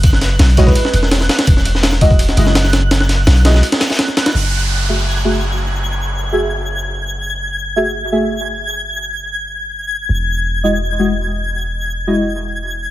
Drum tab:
RD |x---x---x---x---x---x---x---x-x-|x---x---x---x---x---x---x---x---|x---x---x---x---x-x-x---x---x-x-|--------------------------------|
HH |x---x---x-x-x---x---x---x-x-x---|x---x---x-x-x-x-x-x-x-x-x---x---|x---x---x-x-x---x---x-xxx-x-x---|--------------------------------|
SD |--o-o---o---o-o---o---o-o-o-o-o-|--o---o-o-o-------o---o-o-o-o---|o-o-o---o---o-o---o-o-ooo-o-o-o-|--------------------------------|
BD |o-----------o-o-----------------|o-----------o-o-----------------|--------------------------------|--------------------------------|

RD |--------------------------------|--------------------------------|--------------------------------|--------------------------------|
HH |--------------------------------|--------------------------------|--------------------------------|--------------------------------|
SD |--------------------------------|--------------------------------|--------------------------------|--------------------------------|
BD |--------------------------------|--------------------------------|--------------------------------|--------------------------------|

RD |--------------------------------|
HH |--------------------------------|
SD |--------------------------------|
BD |--------------------------------|